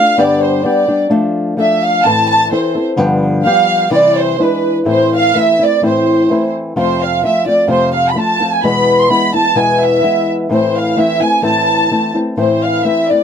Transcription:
Already playing: A3 D4 F4 F5
0.18 G2 D3 G3 B3 D4 G4 D5
0.43 C5
0.64 G3 B3 D4 G4 D5
0.88 G3 B3 D4 G4
1.10 F3 A3 D4 A4
1.57 F3 A3 D4 A4 E5
1.83 F5
2.05 A2 E3 C4 E4 A4 A5
2.30 A5
2.51 E3 C4 E4 A4 C5
2.75 C4 E4 A4
2.97 G2 D3 F3 G3 B3 G4
3.44 F3 G3 B3 G4 F5
3.91 C3 E3 G3 C4 E4 D5
4.18 C5
4.39 E3 G#3 D4 E4
4.43 B4
4.85 A2 E3 A3 C4 E4 C5
5.16 F5
5.34 E3 A3 C4 E4 E5
5.59 A3 C4 E4
5.64 D5
5.82 A2 E3 A3 C4 E4
5.87 C5
6.30 E3 A3 C4 E4
6.76 F2 C3 F3 A3 C4 F4 C5
7.02 F5
7.23 F3 A3 C4 F4 E5
7.46 F3 A3 C4 F4 D5
7.67 F2 C3 F3 A3 C4 F4 C5
7.94 F5
8.09 B5
8.15 F3 A3 C4 F4 A5
8.41 F3 A3 C4 F4
8.52 G#5
8.63 E2 B2 E3 G#3 B3 E4 B5
8.99 C6
9.09 E3 G#3 B3 E4 B5
9.34 E3 G#3 B3 E4 A5
9.55 E2 B2 E3 G#3 B3 E4 G#5
9.83 E5
10.02 E3 G#3 B3 E4
10.49 A2 E3 A3 C4 E4
10.54 C5
10.77 F5
10.96 E3 A3 C4 E4 E5
11.20 A3 C4 E4 G#5
11.42 A2 E3 A3 C4 E4 A5
11.91 E3 A3 C4 E4
12.14 A3 C4 E4
12.37 A2 E3 A3 C4 E4 C5
12.62 F5
12.84 E3 A3 C4 E4 E5
13.08 A3 C4 E4 D5

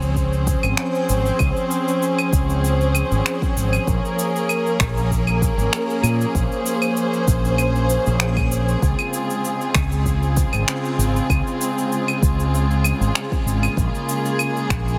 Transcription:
Already playing: C#2 F3 C4 C#4 G#4 C5
0.02 cabasa
0.16 kick, cabasa
0.33 cabasa
0.47 kick, cabasa
0.63 G#1, cabasa, claves
0.77 finger snap, cabasa
0.95 cabasa
1.09 G#1, cabasa
1.26 cabasa
1.39 C#2, kick, cabasa, claves
1.56 cabasa
1.71 cabasa
1.88 cabasa
2.02 cabasa
2.19 cabasa, claves
2.33 C#2, kick, cabasa
2.50 cabasa
2.64 cabasa
2.81 cabasa
2.95 cabasa, claves
3.11 G#1, cabasa
3.26 finger snap, cabasa
3.42 kick, cabasa
3.57 G#1, cabasa
3.73 cabasa, claves
3.86 A#1 F3 A#3 A#4, kick, cabasa
4.05 cabasa
4.19 cabasa
4.36 cabasa
4.49 cabasa, claves
4.67 cabasa
4.80 A#1, finger snap, kick, cabasa
4.97 cabasa
5.11 kick, cabasa
5.27 cabasa, claves
5.42 kick, cabasa
5.58 G#1, cabasa
5.73 finger snap, cabasa
5.90 cabasa
6.03 A#2, cabasa, claves
6.21 cabasa
6.35 A#1 C5, kick, cabasa
6.52 cabasa
6.66 cabasa
6.82 cabasa, claves
6.97 cabasa
7.13 cabasa
7.28 A#1, kick, cabasa
7.45 cabasa
7.58 cabasa, claves
7.76 cabasa
7.90 cabasa
8.06 A#1, cabasa
8.20 finger snap, cabasa
8.37 kick, cabasa, claves
8.52 cabasa
8.68 cabasa
8.82 C#2 C#3 G#3 C4 F4, kick, cabasa
8.99 cabasa, claves
9.13 cabasa
9.30 cabasa
9.45 cabasa
9.61 cabasa
9.75 C#2, finger snap, kick, cabasa, claves
9.92 cabasa
10.06 kick, cabasa
10.23 cabasa
10.37 kick, cabasa
10.53 G#1, cabasa, claves
10.68 finger snap, cabasa
10.85 cabasa
10.98 G#1, cabasa
11.16 cabasa
11.30 C#2, kick, cabasa, claves
11.47 cabasa
11.61 cabasa
11.78 cabasa
11.92 cabasa
12.08 cabasa, claves
12.22 C#2, kick, cabasa
12.40 cabasa
12.54 cabasa
12.71 cabasa
12.84 cabasa, claves
13.01 G#1, cabasa
13.15 finger snap, cabasa
13.32 kick, cabasa
13.46 G#1, cabasa
13.63 cabasa, claves
13.77 A#1 A#3 G#4, kick, cabasa
13.95 cabasa
14.09 cabasa
14.26 cabasa
14.39 cabasa, claves
14.57 cabasa
14.70 A#1, finger snap, kick, cabasa
14.88 cabasa

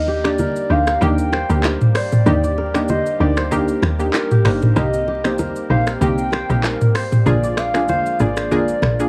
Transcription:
Already playing: D#2 G3 A#3 G4 A#4 D#5
0.08 G4, low bongo
0.24 A#3 D4 D#4 G4 D5, finger snap, cross-stick, low bongo, shaker
0.38 A#4, high bongo, low conga, shaker
0.56 shaker
0.70 D2 A#3 D4 D#4 G4 C5 F5
0.87 A#4, finger snap, cross-stick, shaker
1.01 D#2 A#3 D4 D#4 G4 A#4 G5, low conga, shaker
1.18 shaker
1.32 C5, finger snap, cross-stick, high bongo, low bongo
1.50 D2 A#3 D4 D#4 G4 A#4, shaker
1.64 C5, finger snap, cross-stick, clap, high bongo, shaker
1.81 mid tom, shaker
1.95 C5 D5, finger snap, cross-stick, open hi-hat
2.12 mid tom, low bongo, shaker
2.26 D#2 A#3 D4 D#4 G4, low conga, shaker
2.44 D5, shaker
2.58 A#4, low bongo
2.74 A#3 D4 D#4 G4, finger snap, cross-stick, low bongo, shaker
2.88 C5 D#5, high bongo, low conga, shaker
3.06 shaker
3.20 D2 A#3 D4 D#4 G4 C5 D5
3.37 C5, finger snap, cross-stick, shaker
3.51 A#3 D4 D#4 G4 A#4, low conga, shaker
3.68 shaker
3.82 D#2, finger snap, cross-stick, high bongo, low bongo
4.00 A#3 D4 D#4 G4, shaker
4.14 A#4, finger snap, cross-stick, clap, high bongo, shaker
4.31 G4, mid tom, shaker
4.45 G1 A#3 D4 D#4 G4 A#4 C5, finger snap, cross-stick, open hi-hat
4.62 mid tom, low bongo, shaker
4.76 C2 A#3 C4 D#4 G4 A#4 D#5, low conga, shaker
4.94 shaker
5.08 G4, low bongo
5.24 A#3 C4 D#4 G4 C5, finger snap, cross-stick, low bongo, shaker
5.38 A#4, high bongo, low conga, shaker
5.56 shaker
5.70 A#1 A#3 C4 D#4 G4 C5 F5
5.87 A#4, finger snap, cross-stick, shaker
6.01 C2 A#3 C4 D#4 G4 A#4 G5, low conga, shaker
6.18 shaker
6.32 C5, finger snap, cross-stick, high bongo, low bongo
6.49 A#1 A#3 C4 D#4 G4 A#4, shaker
6.64 A#4, finger snap, cross-stick, clap, high bongo, shaker
6.81 mid tom, shaker
6.95 C5, finger snap, cross-stick, open hi-hat
7.12 mid tom, low bongo, shaker
7.26 A#1 F3 G#3 A#3 D4 F4 G#4 D5, low conga, shaker
7.44 D5, shaker
7.57 D5 F5, finger snap, cross-stick, low bongo, shaker
7.74 A#3 D4 F4 G#4, finger snap, cross-stick, low bongo, shaker
7.88 C5 F5, high bongo, low conga, shaker
8.06 shaker
8.19 G#1 A#3 D4 F4 G#4 D5, shaker
8.37 C5, finger snap, cross-stick, shaker
8.51 A#3 D4 F4 G#4 A#4, low conga, shaker
8.68 shaker
8.82 A#1, finger snap, cross-stick, high bongo, low bongo
9.00 A#3 D4 F4 G#4, shaker

